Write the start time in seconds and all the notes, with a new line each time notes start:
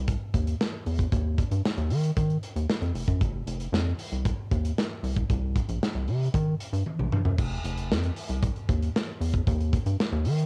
Already playing: C2
0.08 kick, closed hi-hat
0.34 D#2, kick, closed hi-hat
0.47 closed hi-hat
0.61 snare
0.86 E2, open hi-hat
0.99 kick, closed hi-hat
1.12 D#2, kick, closed hi-hat
1.38 kick, closed hi-hat
1.51 G2, closed hi-hat
1.65 snare
1.77 D#2, closed hi-hat
1.90 D#3, open hi-hat
2.04 closed hi-hat
2.17 D#3, kick, closed hi-hat
2.30 closed hi-hat
2.43 closed hi-hat
2.56 D#2, closed hi-hat
2.70 snare
2.82 F2, closed hi-hat
2.94 F1, open hi-hat
3.08 F#2, kick, closed hi-hat
3.21 F1, kick, closed hi-hat
3.47 F1, closed hi-hat
3.60 closed hi-hat
3.73 F2, snare
3.99 open hi-hat
4.12 C2, closed hi-hat
4.25 kick, closed hi-hat
4.51 D#2, kick, closed hi-hat
4.65 closed hi-hat
4.78 snare
5.03 C2, open hi-hat
5.17 kick, closed hi-hat
5.30 C2, kick, closed hi-hat
5.56 kick, closed hi-hat
5.69 A#1, closed hi-hat
5.83 snare
5.95 C2
6.08 C3, open hi-hat
6.21 closed hi-hat
6.34 D#3, kick, closed hi-hat
6.60 closed hi-hat
6.73 G2, closed hi-hat
6.86 high tom
6.99 A#1, mid tom
7.12 G2, mid tom
7.25 F#2, floor tom
7.38 F1, kick, crash
7.64 F1, closed hi-hat
7.77 closed hi-hat
7.90 F2, snare
8.03 closed hi-hat
8.16 open hi-hat
8.29 C2, closed hi-hat
8.43 kick, closed hi-hat
8.56 closed hi-hat
8.69 D#2, kick, closed hi-hat
8.82 closed hi-hat
8.96 snare
9.21 E2, open hi-hat
9.34 kick, closed hi-hat
9.47 D#2, kick, closed hi-hat
9.61 closed hi-hat
9.73 kick, closed hi-hat
9.86 G2, closed hi-hat
10.00 snare
10.12 D#2
10.25 D#3, open hi-hat
10.38 closed hi-hat